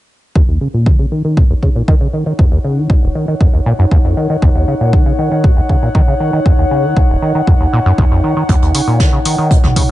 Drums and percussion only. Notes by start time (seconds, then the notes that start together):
0.35 kick
0.86 kick
1.37 kick
1.63 kick
1.88 kick
2.39 kick
2.90 kick
3.41 kick
3.91 kick
4.42 kick
4.93 kick
5.44 kick
5.69 kick
5.95 kick
6.46 kick
6.97 kick
7.47 kick
7.98 kick
8.49 kick, closed hi-hat
8.62 closed hi-hat
8.75 closed hi-hat, open hi-hat
9.00 kick, snare, closed hi-hat
9.25 closed hi-hat, open hi-hat
9.51 kick, closed hi-hat
9.63 snare, mid tom
9.76 kick, closed hi-hat, mid tom, open hi-hat